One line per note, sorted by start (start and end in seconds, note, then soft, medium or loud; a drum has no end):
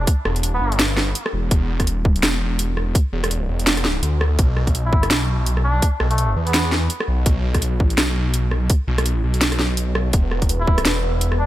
0.00 0.05 D4 medium
0.07 kick loud
0.07 closed hi-hat medium
0.25 0.60 E1 loud
0.25 cross-stick medium
0.36 closed hi-hat soft
0.43 closed hi-hat medium
0.54 0.79 B3 medium
0.61 1.14 G1 loud
0.72 closed hi-hat soft
0.79 cross-stick medium
0.79 snare loud
0.79 closed hi-hat medium
0.97 snare medium
1.15 closed hi-hat medium
1.26 cross-stick medium
1.33 1.50 E1 loud
1.51 2.22 E1 loud
1.51 kick loud
1.51 closed hi-hat medium
1.80 kick medium
1.80 cross-stick medium
1.80 closed hi-hat soft
1.87 closed hi-hat medium
2.05 kick loud
2.16 closed hi-hat soft
2.23 2.94 E1 loud
2.23 cross-stick medium
2.23 snare loud
2.23 closed hi-hat medium
2.59 closed hi-hat medium
2.77 cross-stick medium
2.95 kick loud
2.95 closed hi-hat medium
3.13 3.48 E1 loud
3.24 cross-stick medium
3.24 closed hi-hat soft
3.31 closed hi-hat medium
3.49 4.02 E1 loud
3.59 closed hi-hat soft
3.67 snare loud
3.67 closed hi-hat medium
3.77 cross-stick soft
3.77 closed hi-hat soft
3.85 snare medium
4.03 4.37 D2 loud
4.03 closed hi-hat medium
4.21 cross-stick medium
4.39 5.09 B1 loud
4.39 kick loud
4.39 closed hi-hat medium
4.57 cross-stick medium
4.67 kick medium
4.67 closed hi-hat soft
4.75 closed hi-hat medium
4.85 5.06 E4 medium
4.93 kick loud
5.03 cross-stick medium
5.03 closed hi-hat soft
5.11 5.81 B1 medium
5.11 snare loud
5.11 closed hi-hat medium
5.46 closed hi-hat medium
5.57 cross-stick medium
5.64 5.87 D4 medium
5.82 kick loud
5.82 closed hi-hat medium
6.00 6.35 B1 loud
6.00 cross-stick medium
6.10 6.32 A3 loud
6.10 closed hi-hat soft
6.18 closed hi-hat medium
6.36 6.89 E2 loud
6.46 6.72 B3 loud
6.46 closed hi-hat soft
6.54 cross-stick medium
6.54 snare loud
6.54 closed hi-hat medium
6.72 snare medium
6.90 closed hi-hat medium
7.00 cross-stick medium
7.08 7.25 B1 loud
7.26 7.76 B1 loud
7.26 kick loud
7.26 closed hi-hat medium
7.54 kick medium
7.54 cross-stick medium
7.54 closed hi-hat soft
7.62 closed hi-hat medium
7.76 7.97 A#1 loud
7.80 kick loud
7.90 closed hi-hat soft
7.98 8.69 B1 medium
7.98 cross-stick medium
7.98 snare loud
7.98 closed hi-hat medium
8.34 closed hi-hat medium
8.51 cross-stick medium
8.70 kick loud
8.70 closed hi-hat medium
8.88 9.22 B1 loud
8.98 cross-stick medium
8.98 closed hi-hat soft
9.06 closed hi-hat medium
9.24 10.12 B1 loud
9.34 closed hi-hat soft
9.41 snare loud
9.41 closed hi-hat medium
9.52 cross-stick medium
9.52 closed hi-hat soft
9.59 snare medium
9.77 closed hi-hat medium
9.95 cross-stick medium
10.13 10.84 E1 loud
10.13 11.46 B3 medium
10.13 11.46 B4 medium
10.13 kick loud
10.13 closed hi-hat medium
10.31 cross-stick medium
10.42 kick medium
10.42 closed hi-hat soft
10.49 closed hi-hat medium
10.60 10.81 E4 loud
10.67 kick loud
10.78 cross-stick medium
10.78 closed hi-hat soft
10.85 11.46 E1 medium
10.85 snare loud
10.85 closed hi-hat medium
11.21 closed hi-hat medium
11.32 cross-stick medium
11.39 11.46 D4 medium